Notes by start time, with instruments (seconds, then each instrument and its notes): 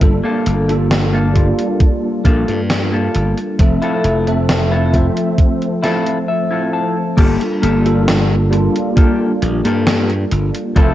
0.01 slap bass G1, tine electric piano G3 A#3 D4 F4 A4, kick, closed hi-hat
0.24 clean electric guitar A#3 F4 A4
0.46 slap bass G1, closed hi-hat
0.68 tine electric piano G3 A#3 D4 F4 A4, closed hi-hat
0.91 snare, closed hi-hat
1.13 clean electric guitar A#3 F4 A4
1.33 tine electric piano G3 A#3 D4 F4, kick, closed hi-hat
1.59 closed hi-hat
1.80 muted clean electric guitar stroke, kick, closed hi-hat
2.25 slap bass A#1, clean electric guitar A#3 F4 A4, kick, closed hi-hat
2.48 slap bass G2, closed hi-hat
2.70 snare, closed hi-hat
2.92 clean electric guitar A#3 F4 A4
3.15 slap bass G1, closed hi-hat
3.38 closed hi-hat
3.59 slap bass F1, tine electric piano F3 A3 C4 A4 E5, kick, closed hi-hat
3.82 clean electric guitar E4 F4 A4, closed hi-hat
4.04 slap bass F1, closed hi-hat
4.27 tine electric piano F3 A3 C4 A4 E5, closed hi-hat
4.49 snare, closed hi-hat
4.71 clean electric guitar E4 F4 A4
4.92 tine electric piano F3 A3 C4 C5 E5, kick, closed hi-hat
5.17 closed hi-hat
5.38 muted clean electric guitar stroke, kick, closed hi-hat
5.62 closed hi-hat
5.83 clean electric guitar E4 F4 A4, snare, closed hi-hat
6.06 closed hi-hat
6.28 clean electric guitar E5
6.51 clean electric guitar E4 F4 A4
6.73 clean electric guitar A5
7.17 slap bass G1, tine electric piano G3 A#3 D4 F4 A4, clean electric guitar A#3 F4 G4 A4, kick, closed hi-hat, crash
7.41 closed hi-hat
7.62 slap bass G1, clean electric guitar A#3 F4 G4 A4, closed hi-hat
7.84 tine electric piano G3 A#3 D4 F4 A4, closed hi-hat
8.08 snare, closed hi-hat
8.50 tine electric piano G3 A#3 D4 F4, muted clean electric guitar stroke, closed hi-hat
8.76 closed hi-hat
8.97 clean electric guitar A#3 F4 G4 A4, kick, closed hi-hat
9.42 slap bass A#1, closed hi-hat
9.65 slap bass G2, clean electric guitar A#3 F4 G4 A4, closed hi-hat
9.87 snare, closed hi-hat
10.10 closed hi-hat
10.31 slap bass G1, closed hi-hat
10.54 muted clean electric guitar stroke, closed hi-hat
10.76 slap bass F1, tine electric piano F3 A3 C4 A4 E5, clean electric guitar C4 E4 F4 A4, kick, closed hi-hat